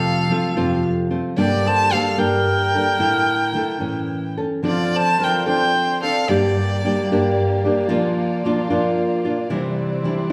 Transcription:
Already playing: F2 C3 F3 A3 C4 F4 A4 F5
0.30 F3 A3 C4 F4
0.57 F2 C3 F3 A3 C4 F4
1.11 F3 A3 C4 F4
1.37 G2 D3 G3 A#3 D4 G4 A4 D5
1.68 C5 A5
1.92 G3 A#3 D4 A4 F5
2.17 G2 D3 G3 A#3 D4 A#4 G5
2.74 G3 A#3 D4 A4
3.00 A2 D3 E4
3.54 D3 A3 E4 A4
3.80 A2 E3 C#4
4.37 A3 C#4 A4
4.62 D3 F3 C4 D4 F4 A4 D5
4.67 F4
4.95 C5 A5
5.20 F3 C4 D4 A4 A#4 G5
5.46 D3 F3 C4 D4 A4 C5 G5
6.02 C4 D4 A4 F5
6.28 G2 D3 G3 A#3 D4 G4 D5
6.84 G3 A#3 D4 G4
7.12 G2 D3 G3 A#3 D4 G4
7.65 G3 A#3 D4 G4
7.89 A#2 F3 A#3 D4 F4
8.45 F3 A#3 D4 F4
8.70 A#2 F3 A#3 D4 F4
9.25 A#3 D4 F4
9.50 C3 E3 G3 C4 D4 E4
10.04 E3 G3 D4 E4

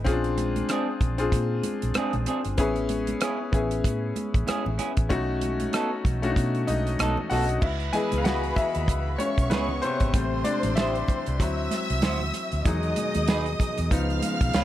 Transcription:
0.04 A#1 C4 C#4 F4 G#4, kick, closed hi-hat, muted conga, low conga
0.12 D4
0.24 closed hi-hat
0.38 closed hi-hat, high conga
0.56 closed hi-hat, high conga
0.69 C4 D4 G#4, cross-stick, closed hi-hat
1.00 A#1, kick, closed hi-hat, low conga
1.18 C4 D4 F4 G#4, closed hi-hat
1.32 A#2, kick, closed hi-hat, muted conga
1.63 closed hi-hat, muted conga, high conga
1.82 A#1, closed hi-hat
1.94 C4 D4 G#4, muted fingered electric bass stroke, cross-stick, closed hi-hat, high conga
2.13 A#1, closed hi-hat, high conga, low conga
2.26 C4 D4 G#4, closed hi-hat, muted conga
2.45 G1, closed hi-hat
2.57 A1 B3 C#4 E4 G#4, kick, closed hi-hat, low conga
2.76 closed hi-hat
2.89 closed hi-hat, high conga
3.07 closed hi-hat, high conga
3.21 C#4 E4 G#4, cross-stick, closed hi-hat
3.52 A1 B3 C#4 E4 G#4, kick, closed hi-hat, muted conga, low conga
3.71 closed hi-hat
3.84 A2, kick, closed hi-hat
4.16 closed hi-hat, muted conga, high conga
4.34 A1, kick, closed hi-hat
4.47 C#4 E4 G#4, cross-stick, closed hi-hat, high conga
4.66 A1, high conga, low conga
4.78 C#4 E4 G#4, closed hi-hat, muted conga
4.97 A1, kick, closed hi-hat
5.09 B1 A3 C#4 D#4 F#4, kick, closed hi-hat, muted conga, low conga
5.41 closed hi-hat, high conga
5.60 closed hi-hat, high conga
5.73 B3 D#4 A4, cross-stick, closed hi-hat, muted conga
6.05 B1, kick, closed hi-hat, low conga
6.22 A3 C#4 D4 F#4, closed hi-hat
6.30 D#4
6.36 B2, kick, closed hi-hat
6.55 closed hi-hat
6.67 B1 D#4 D#5, cross-stick, closed hi-hat, high conga
6.87 closed hi-hat
6.99 B1 B3 D#4 A4, cross-stick, closed hi-hat, muted conga, high conga
7.17 high conga, low conga
7.30 B1 B3 D#4 F#4 A4 F#5, open hi-hat
7.49 closed hi-hat
7.61 C#2 E4 B4 E5 B5, kick, crash, muted conga
7.80 closed hi-hat
7.93 E3 B3 G#4 D#5 G#5, closed hi-hat, high conga
8.12 C#2, closed hi-hat, high conga
8.18 F5
8.24 E4 F#4 G#4 B4 F#5, snare, closed hi-hat, muted conga
8.44 closed hi-hat
8.56 E4 E5, muted fingered electric bass stroke, kick, closed hi-hat, muted conga, low conga
8.75 D#2, closed hi-hat
8.88 C#2, kick, closed hi-hat
9.18 C#4 C#5 C#6, closed hi-hat, muted conga, high conga
9.38 B1, kick, closed hi-hat
9.50 C#2 B3 E4 G#4 B4, snare, closed hi-hat, muted conga, high conga
9.69 high conga, low conga
9.82 C3 C5, closed hi-hat
10.00 G#1, kick, closed hi-hat
10.13 A1 G3 A3 C4 C5 C6, kick, closed hi-hat
10.44 D4 D5, closed hi-hat, high conga
10.63 A1, closed hi-hat, high conga
10.75 E4 G4 C5 E5, snare, closed hi-hat, muted conga
10.95 closed hi-hat
11.08 muted fingered electric bass stroke, kick, closed hi-hat, muted conga, low conga
11.26 C2, closed hi-hat
11.40 D2 F#3 C4 E4 E5 E6, kick, closed hi-hat, muted conga
11.71 snare, closed hi-hat, muted conga, high conga
11.90 C2, closed hi-hat
12.02 D2 E4 F#4 C5, snare, closed hi-hat, muted conga, high conga
12.21 high conga, low conga
12.33 closed hi-hat, muted conga
12.52 D2, closed hi-hat
12.64 E2 B2 D#3 F#3 G#3 D#4 G#4 D#5 D#6, kick, closed hi-hat, muted conga
12.83 closed hi-hat
12.96 closed hi-hat, muted conga, high conga
13.14 D#2, closed hi-hat, high conga
13.28 D#4 G#4 B4, snare, closed hi-hat
13.46 closed hi-hat
13.59 muted fingered electric bass stroke, kick, closed hi-hat, low conga
13.78 E2, closed hi-hat
13.91 C#2 C#3 F3 B3 D#4 F4 F5 F6, kick, closed hi-hat, muted conga
14.10 closed hi-hat
14.22 closed hi-hat, muted conga, high conga
14.41 B1, kick, closed hi-hat
14.53 C#2 C#4 F4 B4, snare, closed hi-hat, muted conga, high conga

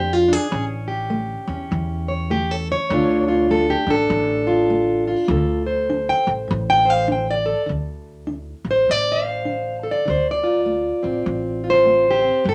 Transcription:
Already playing: F2 A#3 D4 G4
0.13 F4
0.28 D4
0.33 G#4
0.51 A1 A2 C#4
0.88 G4
1.10 A3
1.47 E2 C#4
1.71 E2 E3
2.08 C#5
2.30 A3 G4
2.51 A4
2.72 C#5
2.90 D2 D3 A3 D4 F4
3.28 F4
3.50 A3 A4
3.70 G4
3.87 A1 D4 A4
4.10 A1 A2
4.47 F4
4.70 A3
5.07 F4
5.28 D2 D3 A4
5.66 C5
5.90 D4
6.09 G5
6.27 A1
6.48 A1 A2
6.70 G5
6.85 C5
6.90 F5
7.08 D4
7.12 G5
7.31 D5
7.46 A4
7.66 D2 D3
8.27 D4
8.65 A1
8.71 C5
8.87 A1 A2
8.91 D5
9.12 F5
9.25 C5
9.45 D4
9.83 A4
9.91 D5
10.06 D2 D3
10.10 C5
10.31 D5
10.43 F4
10.66 A3
11.03 A1 C4
11.26 A1 A2
11.64 F4
11.70 C5
11.86 A3
12.10 G4
12.22 C4
12.44 G1 G3
12.49 A4

